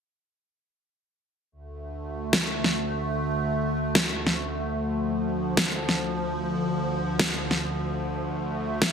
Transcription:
1.52 8.92 D2 medium
1.52 8.92 D3 medium
1.52 4.75 A3 medium
2.33 snare loud
2.64 snare soft
3.95 snare loud
4.27 snare soft
4.76 8.00 F3 medium
5.57 snare loud
5.89 snare soft
7.20 snare loud
7.51 snare soft
8.01 8.92 A3 medium
8.82 snare loud

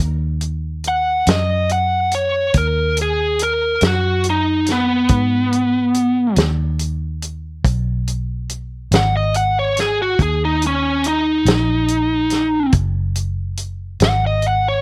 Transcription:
0.00 1.23 D#2 medium
0.41 closed hi-hat soft
0.84 closed hi-hat soft
0.88 1.28 F#5 medium
1.27 2.51 F#2 medium
1.27 1.70 D#5 medium
1.27 snare loud
1.27 closed hi-hat medium
1.69 2.12 F#5 medium
1.69 closed hi-hat soft
2.12 2.55 C#5 medium
2.12 closed hi-hat medium
2.54 3.78 D#2 medium
2.54 2.97 A#4 medium
2.54 kick medium
2.54 closed hi-hat medium
2.97 closed hi-hat medium
3.02 3.41 G#4 medium
3.39 closed hi-hat medium
3.43 3.83 A#4 medium
3.81 5.06 F#2 medium
3.81 snare medium
3.81 closed hi-hat medium
3.87 4.26 F#4 medium
4.24 closed hi-hat medium
4.30 4.69 D#4 medium
4.66 snare soft
4.66 closed hi-hat medium
4.72 6.35 B3 medium
5.09 6.33 G#2 medium
5.09 kick loud
5.09 closed hi-hat medium
5.53 closed hi-hat medium
5.94 closed hi-hat soft
6.36 7.60 D#2 medium
6.36 snare medium
6.36 closed hi-hat medium
6.79 closed hi-hat soft
7.22 closed hi-hat soft
7.64 8.88 B1 medium
7.64 kick loud
7.64 closed hi-hat medium
8.08 closed hi-hat medium
8.50 closed hi-hat medium
8.91 10.15 G#1 medium
8.91 snare medium
8.91 closed hi-hat medium
8.96 9.14 F#5 medium
9.17 9.35 D#5 medium
9.34 9.56 F#5 medium
9.34 closed hi-hat medium
9.59 9.78 C#5 medium
9.77 9.99 G#4 medium
9.77 snare soft
9.77 closed hi-hat medium
10.02 10.21 F#4 medium
10.19 11.42 D#2 medium
10.19 10.41 G#4 medium
10.19 kick loud
10.19 closed hi-hat medium
10.45 10.63 D#4 medium
10.62 closed hi-hat medium
10.67 11.05 C#4 medium
11.04 12.71 D#4 medium
11.04 closed hi-hat medium
11.45 12.69 A#1 medium
11.45 snare medium
11.45 closed hi-hat medium
11.88 closed hi-hat medium
12.30 snare soft
12.30 closed hi-hat medium
12.72 13.96 F#1 medium
12.72 kick medium
12.72 closed hi-hat medium
13.16 closed hi-hat medium
13.57 closed hi-hat medium
14.00 14.82 G#1 medium
14.00 snare medium
14.00 closed hi-hat medium
14.05 14.23 F#5 medium
14.27 14.45 D#5 medium
14.42 closed hi-hat soft
14.48 14.66 F#5 medium
14.68 14.82 C#5 medium

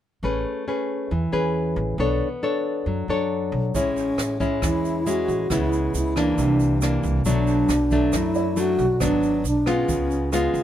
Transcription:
0.23 0.43 A1 medium
0.23 1.09 A3 soft
0.23 0.64 C#4 soft
0.23 0.64 G#4 soft
0.23 0.64 B4 medium
0.68 1.11 C#4 soft
0.68 1.11 G#4 soft
0.68 1.12 B4 medium
1.11 1.32 E2 medium
1.11 1.97 E3 soft
1.32 1.74 E2 medium
1.32 1.95 C#4 medium
1.32 1.95 G#4 medium
1.32 1.96 B4 medium
1.76 1.97 A1 medium
1.98 2.19 B1 medium
1.98 2.85 B3 medium
1.98 2.28 D4 medium
1.98 2.28 A4 medium
1.98 2.28 C#5 medium
2.43 3.05 D4 soft
2.43 3.06 A4 soft
2.43 3.06 C#5 soft
2.86 3.07 F#2 medium
2.86 3.73 F#3 soft
3.08 3.49 F#2 medium
3.08 3.71 D4 soft
3.08 3.72 A4 soft
3.08 3.72 C#5 medium
3.52 3.73 B1 medium
3.74 4.15 A1 medium
3.74 4.61 A2 soft
3.74 4.37 G#3 soft
3.74 4.38 C#4 soft
3.74 4.60 C#4 medium
3.74 4.38 E4 medium
3.74 5.02 C#5 soft
3.74 kick soft
3.74 closed hi-hat soft
3.74 shaker medium
3.96 closed hi-hat soft
3.96 shaker soft
4.18 4.59 A1 medium
4.18 cross-stick medium
4.18 closed hi-hat soft
4.18 shaker medium
4.40 5.03 G#3 medium
4.40 5.03 C#4 medium
4.40 5.03 E4 medium
4.40 kick soft
4.40 closed hi-hat soft
4.40 shaker soft
4.62 5.24 E2 medium
4.62 5.48 E3 soft
4.62 5.11 E4 medium
4.62 kick medium
4.62 cross-stick medium
4.62 closed hi-hat soft
4.62 shaker medium
4.85 closed hi-hat soft
4.85 shaker soft
5.06 5.47 G#3 soft
5.06 5.47 C#4 soft
5.06 5.47 E4 medium
5.06 5.54 F#4 medium
5.06 closed hi-hat soft
5.06 shaker medium
5.28 5.49 A1 medium
5.28 closed hi-hat soft
5.28 shaker soft
5.50 5.91 C#2 medium
5.50 6.36 C#3 medium
5.50 6.13 G#3 medium
5.50 6.13 B3 soft
5.50 6.13 E4 medium
5.50 5.95 E4 medium
5.50 kick soft
5.50 cross-stick medium
5.50 closed hi-hat soft
5.50 shaker medium
5.73 closed hi-hat soft
5.73 shaker soft
5.94 6.35 C#2 medium
5.94 6.20 E4 medium
5.94 closed hi-hat soft
5.94 shaker medium
6.16 6.79 E3 medium
6.16 6.79 A#3 medium
6.16 6.79 D4 medium
6.16 7.05 D4 medium
6.16 cross-stick medium
6.16 closed hi-hat soft
6.16 shaker soft
6.38 7.00 C2 medium
6.38 7.24 C3 soft
6.38 kick medium
6.38 closed hi-hat soft
6.38 shaker medium
6.60 closed hi-hat soft
6.60 shaker soft
6.81 7.22 E3 soft
6.81 7.23 A#3 medium
6.81 7.23 D4 medium
6.81 cross-stick soft
6.81 closed hi-hat soft
6.81 shaker medium
7.03 7.24 C2 medium
7.03 closed hi-hat soft
7.03 shaker soft
7.25 7.66 B1 medium
7.25 8.11 B2 medium
7.25 7.69 F#3 medium
7.25 7.69 A3 soft
7.25 7.70 D4 medium
7.25 8.18 D4 medium
7.25 kick medium
7.25 closed hi-hat soft
7.25 shaker medium
7.47 closed hi-hat soft
7.47 shaker soft
7.69 8.10 B1 medium
7.69 cross-stick medium
7.69 closed hi-hat soft
7.69 shaker medium
7.91 8.54 F#3 medium
7.91 8.54 A3 medium
7.91 8.54 D4 medium
7.91 kick soft
7.91 closed hi-hat soft
7.91 shaker soft
8.13 8.75 F#2 medium
8.13 8.99 F#2 medium
8.13 8.62 E4 medium
8.13 kick medium
8.13 cross-stick medium
8.13 closed hi-hat soft
8.13 shaker medium
8.35 9.19 D5 soft
8.35 closed hi-hat soft
8.35 shaker soft
8.56 8.85 F#3 medium
8.56 8.85 A3 medium
8.56 8.86 D4 medium
8.56 9.02 F#4 medium
8.56 closed hi-hat soft
8.56 shaker medium
8.78 8.99 B1 medium
8.78 closed hi-hat soft
8.78 shaker soft
9.00 9.42 G#1 medium
9.00 9.86 G#2 soft
9.00 9.44 F#3 medium
9.00 9.45 B3 medium
9.00 9.45 D4 medium
9.00 9.44 D4 medium
9.00 kick soft
9.00 cross-stick soft
9.00 closed hi-hat soft
9.00 shaker medium
9.23 closed hi-hat soft
9.23 shaker soft
9.44 9.85 B1 medium
9.44 9.71 D4 medium
9.44 closed hi-hat soft
9.44 shaker medium
9.66 10.29 G#3 medium
9.66 10.29 B3 medium
9.66 10.56 C#4 medium
9.66 10.29 F4 medium
9.66 cross-stick soft
9.66 closed hi-hat soft
9.66 shaker soft
9.88 10.50 C#2 medium
9.88 10.63 C#3 soft
9.88 kick medium
9.88 closed hi-hat soft
9.88 shaker medium
10.10 closed hi-hat soft
10.10 shaker soft
10.32 10.63 G#3 medium
10.32 10.63 B3 soft
10.32 10.63 F4 medium
10.32 cross-stick soft
10.32 closed hi-hat soft
10.32 shaker medium
10.54 10.63 C#2 medium
10.54 closed hi-hat soft
10.54 shaker soft

